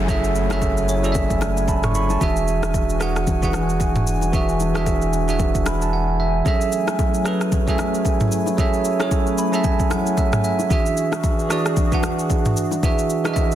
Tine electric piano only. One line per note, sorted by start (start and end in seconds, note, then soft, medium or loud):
0.00 0.08 F#3 medium
0.00 0.08 C#4 medium
0.00 0.09 G#4 medium
0.00 0.10 A4 medium
0.00 0.10 E5 medium
0.00 2.24 F#5 loud
0.08 0.41 F#3 medium
0.08 0.41 C#4 medium
0.08 0.42 G#4 medium
0.08 0.42 A4 medium
0.08 0.42 E5 medium
0.50 0.91 F#3 medium
0.50 0.91 C#4 medium
0.50 0.92 G#4 medium
0.50 0.92 A4 medium
0.50 0.92 E5 medium
0.89 1.14 C#5 medium
1.03 1.88 F#3 medium
1.03 1.88 C#4 medium
1.03 1.88 G#4 medium
1.03 1.89 A4 medium
1.03 1.10 D5 medium
1.12 1.15 E5 medium
1.12 1.54 E5 medium
1.57 1.68 G#5 medium
1.69 1.83 A5 medium
1.69 1.93 B5 medium
1.84 1.94 C#6 medium
1.95 2.10 B5 medium
1.95 2.20 C#6 medium
2.10 2.36 A5 medium
2.21 2.86 E3 medium
2.21 2.87 D4 medium
2.21 2.87 F#4 medium
2.21 2.87 G#4 medium
2.21 2.88 E5 medium
3.00 3.33 E3 medium
3.00 3.33 D4 medium
3.00 3.34 F#4 medium
3.00 3.34 G#4 medium
3.00 3.34 F#5 loud
3.42 4.16 E3 medium
3.42 4.16 D4 medium
3.42 4.16 F#4 medium
3.42 4.17 G#4 medium
3.42 4.17 F#5 medium
4.32 4.66 E3 medium
4.32 4.66 D4 medium
4.32 4.67 F#4 medium
4.32 4.67 G#4 medium
4.32 4.67 E5 medium
4.74 5.16 E3 medium
4.74 5.16 D4 medium
4.74 5.16 F#4 medium
4.74 5.17 G#4 medium
4.74 5.17 E5 medium
5.27 6.12 E3 medium
5.27 6.13 D4 medium
5.27 6.13 F#4 medium
5.27 6.13 G#4 medium
5.27 6.14 E5 medium
5.66 5.81 B5 medium
5.82 5.92 A5 medium
5.93 6.18 F#5 medium
6.20 6.44 E5 medium
6.45 7.11 F#3 medium
6.45 7.11 C#4 medium
6.45 7.12 G#4 medium
6.45 7.12 A4 medium
6.45 7.12 E5 medium
7.25 7.58 F#3 medium
7.25 7.58 C#4 medium
7.25 7.59 G#4 medium
7.25 7.59 A4 medium
7.25 7.59 B4 loud
7.67 8.41 F#3 medium
7.67 8.41 C#4 medium
7.67 8.42 G#4 medium
7.67 8.42 A4 medium
7.67 8.42 E5 medium
8.57 8.91 F#3 medium
8.57 8.91 C#4 medium
8.57 8.91 G#4 medium
8.57 8.92 A4 medium
8.57 8.92 E5 medium
8.99 9.41 F#3 medium
8.99 9.41 C#4 medium
8.99 9.41 G#4 medium
8.99 9.42 A4 medium
8.99 9.42 C#5 medium
9.39 9.53 B5 medium
9.52 10.37 F#3 medium
9.52 10.37 C#4 medium
9.52 10.38 G#4 medium
9.52 10.38 A4 medium
9.52 10.17 E5 medium
9.52 9.64 A5 medium
9.65 9.89 G#5 medium
9.91 10.16 F#5 medium
10.18 10.43 E5 medium
10.44 10.69 E5 medium
10.69 11.36 E3 medium
10.69 11.36 D4 medium
10.69 11.36 F#4 medium
10.69 11.37 G#4 medium
10.69 11.37 E5 medium
11.49 11.83 E3 medium
11.49 11.83 D4 medium
11.49 11.83 F#4 medium
11.49 11.84 G#4 medium
11.49 11.84 D5 loud
11.92 12.65 E3 medium
11.92 12.66 D4 medium
11.92 12.66 F#4 medium
11.92 12.67 G#4 medium
11.92 12.67 F#5 medium
12.83 13.16 E3 medium
12.83 13.16 D4 medium
12.83 13.16 F#4 medium
12.83 13.17 G#4 medium
12.83 13.17 E5 medium
13.24 13.55 E3 medium
13.24 13.55 D4 medium
13.24 13.55 F#4 medium
13.24 13.55 G#4 medium
13.24 13.32 D#5 medium
13.34 13.55 E5 loud